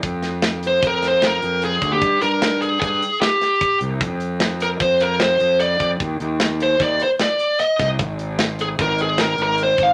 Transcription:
<<
  \new Staff \with { instrumentName = "Lead electric guitar" } { \time 5/4 \key c \minor \tempo 4 = 151 r4. c''8 bes'8 c''8 bes'4 aes'8. g'16~ | g'8 bes'4 aes'8 aes'4 g'4. r8 | r4. bes'8 c''8 bes'8 c''4 d''8. r16 | r4. c''8 d''8 c''8 d''4 ees''8. r16 |
r4. aes'8 bes'8 aes'8 bes'8 bes'8 c''8 f''8 | }
  \new Staff \with { instrumentName = "Fingered electric bass" } { \clef bass \time 5/4 \key c \minor f,2 f,4. f,4 d,8 | g,8 g,4. g,8 r2 c,8 | f,2 f,4. f,4 f,8 | ees,8 ees,4. ees,8 r2 c,8 |
aes,,2 aes,,4. aes,,4 aes,,8 | }
  \new DrumStaff \with { instrumentName = "Drums" } \drummode { \time 5/4 <hh bd>8 <hh sn>8 <hh sn>8 hh8 <hh bd>8 <hh sn>8 <hh sn>8 hh8 hh8 <hh bd>8 | <hh bd>8 hh8 <hh sn>8 hh8 <hh bd>8 hh8 <hh sn>8 <hh sn>8 <hh bd>8 hh8 | <hh bd>8 hh8 <hh sn>8 hh8 <hh bd>8 hh8 <hh sn>8 hh8 hh8 <hh bd>8 | <hh bd>8 hh8 <hh sn>8 hh8 <hh bd sn>8 hh8 <hh sn>8 hh8 hh8 <hh bd sn>8 |
<hh bd>8 hh8 <hh sn>8 hh8 <hh bd>8 hh8 <hh sn>8 hh8 hh8 <hh bd>8 | }
>>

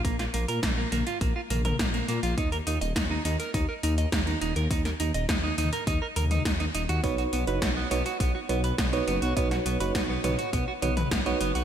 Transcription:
<<
  \new Staff \with { instrumentName = "FM electric piano" } { \time 4/4 \key ees \dorian \tempo 4 = 103 r1 | r1 | r1 | <dis' fis' b' cis''>8. <dis' fis' b' cis''>8. <dis' fis' b' cis''>16 r8. <dis' fis' b' cis''>16 r8 <dis' fis' b' cis''>8. |
<dis' fis' b' cis''>8. <dis' fis' b' cis''>8. <dis' fis' b' cis''>16 r8. <dis' fis' b' cis''>16 r8 <dis' fis' b' cis''>8. | }
  \new Staff \with { instrumentName = "Clean electric guitar" } { \time 4/4 \key ees \dorian bes16 f'16 bes16 bes'16 bes16 bes16 bes16 f'16 bes16 f'16 bes16 bes'16 bes16 bes16 bes16 f'16 | ees'16 bes'16 ees'16 ees''16 ees'16 ees'16 ees'16 bes'16 ees'16 bes'16 ees'16 ees''16 ees'16 ees'16 ees'16 bes'16 | ees'16 bes'16 ees'16 ees''16 ees'16 ees'16 ees'16 bes'16 ees'16 bes'16 bes'16 ees'16 ees'16 ees'16 ees'16 ges'16 | b16 fis'16 b16 b'16 b16 b16 b16 fis'16 b16 fis'16 b16 b'16 b16 b16 b16 fis'16 |
b16 fis'16 b16 b'16 b16 b16 b16 fis'16 b16 fis'16 b16 b'16 b16 b16 b16 fis'16 | }
  \new Staff \with { instrumentName = "Detuned saw bass" } { \clef bass \time 4/4 \key ees \dorian bes,,8 bes,,16 bes,16 bes,,8 bes,,16 r16 bes,,16 r16 bes,,8 bes,,8 bes,16 bes,,16 | ees,8 ees,16 ees,,16 ees,8 ees,16 r16 ees,16 r16 ees,8 ees,8 ees,,16 ees,16 | ees,8 ees,16 ees,,16 ees,8 ees,16 r16 ees,16 r16 ees,8 ees,8 ees,,16 ees,16 | b,,8 b,,16 fis,,16 b,,8 b,,16 r16 b,,16 r16 b,,8 b,,8 fis,,16 b,,16 |
b,,8 b,,16 fis,,16 b,,8 b,,16 r16 b,,16 r16 b,,8 b,,8 fis,,16 b,,16 | }
  \new DrumStaff \with { instrumentName = "Drums" } \drummode { \time 4/4 <hh bd>16 <hh sn>16 hh16 hh16 <hh bd sn>8 <hh toml>16 hh16 <hh bd>8 <hh toml>16 <hh toml>16 <hh bd sn>16 hh16 hh16 hh16 | <hh bd>16 hh16 hh16 hh16 <hh bd sn>8 hh16 hh16 <hh bd>8 hh16 hh16 <hh bd sn>16 hh16 hh16 hh16 | <hh bd>16 <hh sn>16 hh16 hh16 <hh bd sn>8 <hh toml>16 hh16 <hh bd>8 <hh toml>16 <hh toml>16 <hh bd sn>16 hh16 hh16 hh16 | <hh bd>16 hh16 hh16 hh16 <hh bd sn>8 hh16 hh16 <hh bd>8 hh16 hh16 <hh bd sn>16 hh16 hh16 hh16 |
<hh bd>16 <hh sn>16 hh16 hh16 <hh bd sn>8 <hh toml>16 hh16 <hh bd>8 <hh toml>16 <hh toml>16 <hh bd sn>16 hh16 hh16 hh16 | }
>>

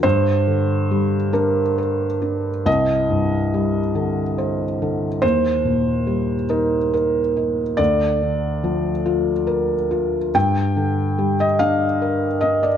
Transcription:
<<
  \new Staff \with { instrumentName = "Felt piano" } { \time 6/8 \key g \minor \tempo 4. = 47 c''4. bes'4. | ees''2. | c''4. bes'4. | d''2. |
g''4~ g''16 ees''16 f''4 ees''16 d''16 | }
  \new Staff \with { instrumentName = "Felt piano" } { \clef bass \time 6/8 \key g \minor g,8 d8 g8 d'8 bes'8 d'8 | c,8 g,8 g8 d8 c''8 d8 | ees,8 bes,8 g8 ees'8 bes'8 ees'8 | d,8 d8 f8 f'8 bes'8 f'8 |
g,8 d8 g8 d'8 bes'8 d'8 | }
>>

